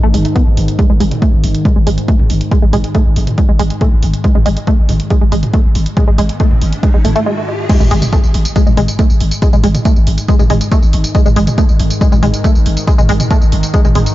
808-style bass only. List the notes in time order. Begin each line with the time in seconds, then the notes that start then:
0.04 G#1
0.14 G#1
0.47 G#1
0.57 G#1
0.90 G#1
1.00 G#1
1.33 G#1
1.44 G#1
1.76 G#1
1.87 G#1
2.19 G#1
2.30 G#1
2.62 G#1
2.73 G#1
3.06 G#1
3.16 G#1
3.49 G#1
3.60 G#1
3.92 G#1
4.03 G#1
4.35 G#1
4.46 G#1
4.78 G#1
4.89 G#1
5.21 G#1
5.32 G#1
5.65 G#1
5.75 G#1
6.08 G#1
6.18 G#1
6.51 G#1
6.62 G#1
6.94 G#1
7.05 G#1
7.80 G#1
7.91 G#1
8.24 G#1
8.34 G#1
8.67 G#1
8.77 G#1
9.10 G#1
9.21 G#1
9.53 G#1
9.64 G#1
9.96 G#1
10.07 G#1
10.39 G#1
10.50 G#1
10.83 G#1
10.93 G#1
11.26 G#1
11.36 G#1
11.69 G#1
11.79 G#1
12.12 G#1
12.23 G#1
12.55 G#1
12.66 G#1
12.98 G#1
13.09 G#1
13.42 G#1
13.52 G#1
13.85 G#1
13.95 G#1